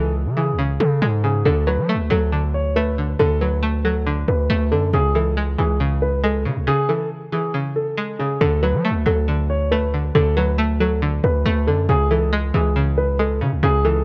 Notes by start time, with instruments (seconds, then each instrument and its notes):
Already playing: 808-style bass C#2, synth pluck C#3 E3 G#3, grand piano A4
0.26 808-style bass C#3
0.37 synth pluck E3, grand piano G#4
0.53 808-style bass C#2
0.59 synth pluck C#3
0.80 808-style bass C#3, grand piano A4
1.02 808-style bass G#2, synth pluck G#3
1.24 synth pluck C#3, grand piano G#4
1.45 808-style bass D2, synth pluck D3, grand piano A4
1.67 synth pluck F#3, grand piano B4
1.78 808-style bass F#3
1.89 synth pluck A3
1.94 808-style bass D2
2.10 808-style bass D2, synth pluck F#3, grand piano A4
2.32 synth pluck D3
2.54 grand piano C#5
2.76 synth pluck A3, grand piano B4
2.98 synth pluck D3
3.19 808-style bass D2, synth pluck D3, grand piano A4
3.41 synth pluck F#3, grand piano B4
3.63 synth pluck A3
3.84 synth pluck F#3, grand piano A4
4.07 synth pluck D3
4.28 808-style bass D2, grand piano B4
4.50 808-style bass D2, synth pluck A3
4.71 808-style bass F#2, synth pluck D3, grand piano A4
4.93 808-style bass C#2, synth pluck C#3, grand piano G#4
5.15 synth pluck E3, grand piano A4
5.37 synth pluck G#3
5.58 808-style bass C#2, synth pluck E3, grand piano G#4
5.80 synth pluck C#3
6.02 grand piano B4
6.24 synth pluck G#3, grand piano A4
6.45 synth pluck C#3, 808-style bass C#3
6.56 808-style bass C#2
6.67 synth pluck C#3, grand piano G#4
6.89 synth pluck E3, grand piano A4
7.32 synth pluck E3, grand piano G#4
7.54 synth pluck C#3
7.76 grand piano A4
7.98 synth pluck G#3
8.19 synth pluck C#3, grand piano G#4
8.41 808-style bass D2, synth pluck D3, grand piano A4
8.63 synth pluck F#3, grand piano B4
8.74 808-style bass F#3
8.85 synth pluck A3
8.90 808-style bass D2
9.06 808-style bass D2, synth pluck F#3, grand piano A4
9.28 synth pluck D3
9.50 grand piano C#5
9.71 synth pluck A3, grand piano B4
9.94 synth pluck D3
10.15 808-style bass D2, synth pluck D3, grand piano A4
10.37 synth pluck F#3, grand piano B4
10.58 synth pluck A3
10.80 synth pluck F#3, grand piano A4
11.02 synth pluck D3
11.24 808-style bass D2, grand piano B4
11.45 808-style bass D2, synth pluck A3
11.67 808-style bass F#2, synth pluck D3, grand piano A4
11.89 808-style bass C#2, synth pluck C#3, grand piano G#4
12.11 synth pluck E3, grand piano A4
12.33 synth pluck G#3
12.54 808-style bass C#2, synth pluck E3, grand piano G#4
12.76 synth pluck C#3
12.98 grand piano B4
13.19 synth pluck G#3, grand piano A4
13.41 808-style bass C#3, synth pluck C#3
13.52 808-style bass C#2
13.63 808-style bass C#2, synth pluck C#3, grand piano G#4
13.85 synth pluck E3, grand piano A4